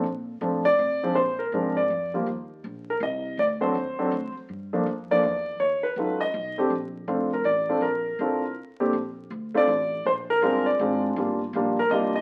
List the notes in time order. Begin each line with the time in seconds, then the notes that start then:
0.03 A#2
0.41 A2 F3 A3 C4 D4
0.65 D5
0.79 C3
1.03 F3 G#3 C4 D4
1.14 A#2 C5
1.39 A#4
1.52 G#2 F3 G#3 C4 D4
1.77 D5
1.90 F2
2.14 F3 G3 A#3 F4
2.26 D#2
2.64 A#1
2.90 A#4
3.00 C2 D#5
3.37 D2 D5
3.61 F#3 A3 C4 D4 C5
3.75 D#2
3.99 F#3 A3 C4 D4
4.12 D2
4.35 muted upright bass stroke
4.49 G2
4.73 F3 A3 A#3 D4
4.86 F2
5.11 F3 A3 A#3 D4 D5
5.23 E2
5.59 D#2 C#5
5.83 B4
5.96 C#2 F#3 A3 D#4 F4
6.21 D#5
6.34 B1
6.58 A3 C4 D4 G4
6.70 A#1
7.08 F1 A3 C4 D4 F4
7.33 A#4
7.44 A1 D5
7.69 A3 C4 D4 F4
7.81 A#1 A#4
8.19 C2 A3 C4 D4 F4
8.80 A#2 A3 C4 D4 G4
8.93 A#1
9.30 D2
9.55 A3 C4 D4 F4 D5
9.67 A1
10.05 A#1 C5
10.30 A#4
10.42 G1 G#3 C4 D4 F4
10.66 D5
10.79 G#1 G#3 C4 D4 F4
11.16 G1 G3 A#3 D4 F4
11.53 A#1 G3 A#3 D4 F4
11.79 A#4
11.89 C2 G3 A#3 D4 F4 D#5
12.15 D#5